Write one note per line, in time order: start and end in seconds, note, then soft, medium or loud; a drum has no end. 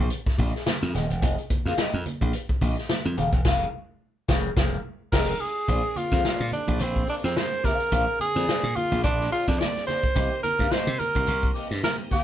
0.10 muted clean electric guitar stroke soft
0.10 closed hi-hat medium
0.10 tambourine soft
0.10 muted conga soft
0.26 muted clean electric guitar stroke soft
0.26 muted slap bass stroke soft
0.26 kick loud
0.26 snare soft
0.38 0.51 A#1 medium
0.38 0.59 G#4 medium
0.38 0.54 A#4 medium
0.38 0.52 D#5 medium
0.38 kick loud
0.38 open hi-hat medium
0.38 tambourine medium
0.38 muted conga soft
0.38 high conga soft
0.54 muted clean electric guitar stroke soft
0.54 snare soft
0.66 snare loud
0.66 closed hi-hat loud
0.66 tambourine medium
0.66 muted conga soft
0.66 high conga medium
0.82 0.92 F2 medium
0.82 muted clean electric guitar stroke soft
0.82 snare soft
0.93 1.07 D#1 medium
0.93 1.11 G#4 medium
0.93 1.09 A#4 medium
0.93 1.08 D#5 medium
0.93 snare soft
0.93 closed hi-hat medium
0.93 tambourine medium
0.93 muted conga soft
0.93 high conga medium
1.09 1.23 E1 medium
1.09 muted clean electric guitar stroke soft
1.09 closed hi-hat medium
1.21 1.35 F1 loud
1.21 1.39 G#4 medium
1.21 1.38 A#4 loud
1.21 1.37 D#5 loud
1.21 kick loud
1.21 closed hi-hat loud
1.21 tambourine medium
1.21 muted conga soft
1.21 low conga medium
1.38 muted clean electric guitar stroke medium
1.38 closed hi-hat medium
1.50 muted clean electric guitar stroke soft
1.50 muted slap bass stroke soft
1.50 kick loud
1.50 closed hi-hat medium
1.50 tambourine medium
1.50 muted conga soft
1.50 high conga medium
1.65 1.76 F2 medium
1.65 1.76 G#4 medium
1.65 1.77 A#4 medium
1.65 1.76 F5 medium
1.65 snare soft
1.65 high conga medium
1.77 1.94 G#4 medium
1.77 1.95 A#4 medium
1.77 1.96 D#5 medium
1.77 muted slap bass stroke soft
1.77 snare loud
1.77 closed hi-hat medium
1.77 tambourine loud
1.77 muted conga soft
1.94 2.04 F2 loud
2.06 muted clean electric guitar stroke soft
2.06 closed hi-hat medium
2.06 tambourine soft
2.06 high conga medium
2.21 2.32 A#1 medium
2.21 2.32 G#4 medium
2.21 2.32 A#4 medium
2.21 2.32 D#5 medium
2.21 kick medium
2.21 low conga medium
2.33 muted clean electric guitar stroke soft
2.33 closed hi-hat medium
2.33 tambourine soft
2.33 muted conga soft
2.49 muted clean electric guitar stroke soft
2.49 muted slap bass stroke soft
2.49 kick loud
2.61 2.74 A#1 medium
2.61 2.78 G#4 medium
2.61 2.77 A#4 medium
2.61 2.76 D#5 medium
2.61 kick loud
2.61 open hi-hat medium
2.61 tambourine soft
2.61 muted conga soft
2.61 high conga soft
2.77 muted clean electric guitar stroke soft
2.77 snare soft
2.89 snare loud
2.89 closed hi-hat loud
2.89 tambourine medium
2.89 high conga medium
3.05 3.15 F2 medium
3.05 muted clean electric guitar stroke medium
3.17 3.30 D#1 medium
3.17 3.34 G#4 medium
3.17 3.33 A#4 medium
3.17 3.33 F5 medium
3.17 closed hi-hat medium
3.17 tambourine medium
3.17 muted conga soft
3.17 high conga medium
3.32 3.43 E1 medium
3.32 kick loud
3.32 closed hi-hat soft
3.45 3.65 F1 loud
3.45 3.65 G#4 medium
3.45 3.65 A#4 loud
3.45 3.66 F5 loud
3.45 kick loud
3.45 snare loud
3.45 crash medium
4.28 4.48 F1 loud
4.28 4.49 G#4 loud
4.28 4.49 A#4 loud
4.28 4.48 F5 loud
4.28 kick loud
4.28 snare loud
4.56 4.76 F1 loud
4.56 4.77 G#4 medium
4.56 4.77 A#4 loud
4.56 4.76 F5 loud
4.56 kick loud
4.56 snare loud
5.12 5.32 F1 loud
5.12 5.32 G#4 loud
5.12 5.42 A#4 medium
5.12 5.33 A#4 loud
5.12 5.33 D#5 loud
5.12 kick loud
5.12 snare loud
5.12 crash medium
5.40 5.99 G#4 medium
5.68 5.81 A#1 medium
5.68 10.11 D3 medium
5.68 12.24 A#3 medium
5.68 12.24 C4 medium
5.68 10.11 G#4 medium
5.68 5.85 G#4 medium
5.68 5.84 C5 medium
5.68 5.83 D5 medium
5.68 kick loud
5.68 closed hi-hat medium
5.68 muted conga soft
5.68 low conga medium
5.84 muted clean electric guitar stroke soft
5.84 closed hi-hat soft
5.96 6.52 F4 medium
5.96 muted clean electric guitar stroke soft
5.96 closed hi-hat medium
5.96 muted conga soft
5.96 high conga medium
6.11 6.22 F2 medium
6.11 6.23 G#4 medium
6.11 6.23 C5 medium
6.11 6.22 F5 medium
6.11 kick medium
6.11 snare soft
6.11 closed hi-hat soft
6.11 high conga medium
6.24 6.45 G#4 medium
6.24 6.46 C5 medium
6.24 6.46 D5 medium
6.24 muted slap bass stroke soft
6.24 snare loud
6.24 muted conga soft
6.40 6.50 A#2 medium
6.40 closed hi-hat soft
6.52 6.82 D4 medium
6.52 muted clean electric guitar stroke soft
6.52 closed hi-hat medium
6.52 muted conga soft
6.52 high conga medium
6.67 6.78 A#1 medium
6.67 6.79 G#4 soft
6.67 6.79 C5 medium
6.67 6.79 D5 medium
6.67 kick medium
6.67 closed hi-hat soft
6.67 low conga medium
6.79 7.03 A#1 loud
6.79 7.09 C4 medium
6.79 muted clean electric guitar stroke soft
6.79 closed hi-hat loud
6.96 muted clean electric guitar stroke soft
6.96 kick medium
6.96 closed hi-hat soft
7.08 7.16 D4 medium
7.08 7.25 G#4 medium
7.08 7.24 C5 medium
7.08 7.23 D5 medium
7.08 open hi-hat medium
7.24 7.34 F2 medium
7.24 7.39 C4 medium
7.24 muted clean electric guitar stroke soft
7.24 snare soft
7.24 closed hi-hat soft
7.36 7.67 C5 medium
7.36 snare loud
7.36 high conga medium
7.52 muted clean electric guitar stroke soft
7.63 7.85 G#4 medium
7.63 8.20 A#4 loud
7.63 7.80 C5 medium
7.63 7.79 F5 medium
7.63 kick medium
7.63 snare soft
7.63 closed hi-hat medium
7.63 muted conga soft
7.63 high conga medium
7.80 muted clean electric guitar stroke soft
7.80 closed hi-hat medium
7.91 8.05 A#1 loud
7.91 8.09 G#4 medium
7.91 8.08 C5 medium
7.91 8.07 F5 medium
7.91 kick loud
7.91 closed hi-hat medium
7.91 muted conga soft
7.91 low conga medium
8.07 muted clean electric guitar stroke soft
8.19 8.77 G#4 loud
8.19 muted clean electric guitar stroke soft
8.19 closed hi-hat medium
8.19 high conga medium
8.35 8.46 F2 medium
8.35 8.45 G#4 medium
8.35 8.46 C5 medium
8.35 8.46 D5 medium
8.35 snare soft
8.35 closed hi-hat soft
8.35 high conga medium
8.47 8.64 G#4 medium
8.47 8.65 C5 medium
8.47 8.65 D5 medium
8.47 muted slap bass stroke soft
8.47 snare loud
8.47 muted conga soft
8.63 8.73 A#2 loud
8.75 9.03 F4 loud
8.75 muted clean electric guitar stroke soft
8.75 closed hi-hat medium
8.75 muted conga soft
8.75 high conga medium
8.91 9.02 A#1 medium
8.91 9.01 G#4 medium
8.91 9.02 C5 medium
8.91 closed hi-hat medium
8.91 low conga medium
9.03 9.27 A#1 medium
9.03 9.30 D4 loud
9.03 muted clean electric guitar stroke soft
9.03 kick loud
9.03 closed hi-hat medium
9.03 muted conga soft
9.19 muted clean electric guitar stroke soft
9.19 snare soft
9.31 9.47 F4 medium
9.31 9.48 G#4 medium
9.31 9.47 C5 medium
9.31 9.46 D5 medium
9.31 open hi-hat medium
9.47 9.58 F2 loud
9.47 9.62 D4 medium
9.47 muted clean electric guitar stroke soft
9.47 kick medium
9.47 snare soft
9.47 closed hi-hat soft
9.60 9.86 D5 medium
9.60 snare loud
9.60 muted conga soft
9.60 high conga medium
9.75 muted clean electric guitar stroke medium
9.75 snare soft
9.75 closed hi-hat soft
9.86 10.04 G#4 medium
9.86 10.39 C5 loud
9.86 10.03 C5 medium
9.86 10.02 D5 medium
9.86 snare soft
9.86 closed hi-hat medium
9.86 muted conga soft
9.86 high conga medium
10.03 muted clean electric guitar stroke soft
10.03 kick medium
10.03 closed hi-hat soft
10.15 10.28 C2 loud
10.15 12.24 D#3 medium
10.15 10.32 G4 medium
10.15 12.24 G4 medium
10.15 10.31 A#4 medium
10.15 10.30 D#5 medium
10.15 kick loud
10.15 closed hi-hat medium
10.15 muted conga soft
10.15 low conga medium
10.31 muted clean electric guitar stroke medium
10.31 closed hi-hat soft
10.43 10.73 A#4 loud
10.43 muted clean electric guitar stroke soft
10.43 closed hi-hat medium
10.43 muted conga soft
10.43 high conga medium
10.58 10.69 G2 medium
10.58 10.70 G4 medium
10.58 10.70 A#4 medium
10.58 10.69 F5 medium
10.58 kick medium
10.58 snare soft
10.58 closed hi-hat soft
10.58 high conga medium
10.71 10.88 G4 medium
10.71 10.89 A#4 medium
10.71 11.01 C5 medium
10.71 10.89 D#5 medium
10.71 muted slap bass stroke soft
10.71 snare loud
10.87 10.97 C3 loud
10.99 11.55 A#4 loud
10.99 muted clean electric guitar stroke soft
10.99 closed hi-hat medium
10.99 high conga medium
11.14 11.25 C2 medium
11.14 11.26 G4 soft
11.14 11.26 A#4 medium
11.14 11.25 D#5 medium
11.14 kick medium
11.14 closed hi-hat medium
11.14 low conga medium
11.27 11.50 C2 medium
11.27 muted clean electric guitar stroke soft
11.27 closed hi-hat medium
11.27 muted conga soft
11.43 muted clean electric guitar stroke medium
11.43 kick medium
11.43 closed hi-hat soft
11.54 11.72 G4 medium
11.54 11.71 A#4 medium
11.54 11.69 D#5 medium
11.54 open hi-hat medium
11.70 11.81 G2 medium
11.70 muted clean electric guitar stroke medium
11.70 snare soft
11.70 closed hi-hat medium
11.83 11.97 A#4 medium
11.83 snare loud
11.83 muted conga soft
11.83 high conga medium
11.98 muted clean electric guitar stroke soft
11.98 closed hi-hat soft
12.11 12.24 G4 medium
12.11 12.24 A#4 medium
12.11 12.24 F5 medium
12.11 kick medium
12.11 snare soft
12.11 closed hi-hat medium
12.11 high conga medium